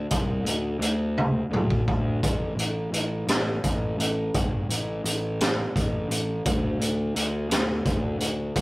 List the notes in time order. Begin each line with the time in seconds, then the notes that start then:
0.11 C2, kick, closed hi-hat
0.44 D2, closed hi-hat
0.79 D2, closed hi-hat
1.18 high tom
1.51 D2, mid tom
1.70 kick
1.88 D2, kick
2.23 A1, kick, closed hi-hat
2.56 A1, closed hi-hat
2.92 A1, closed hi-hat
3.27 A1, snare, closed hi-hat
3.64 A1, kick, closed hi-hat
3.98 A1, closed hi-hat
4.34 G1, kick, closed hi-hat
4.69 A1, closed hi-hat
5.04 A1, closed hi-hat
5.41 snare, closed hi-hat
5.76 A1, kick, closed hi-hat
6.09 A1, closed hi-hat
6.46 D2, kick, closed hi-hat
6.80 D2, closed hi-hat
7.16 D2, closed hi-hat
7.49 D2, snare, closed hi-hat
7.85 D2, kick, closed hi-hat
8.19 D2, closed hi-hat
8.56 C2, kick, closed hi-hat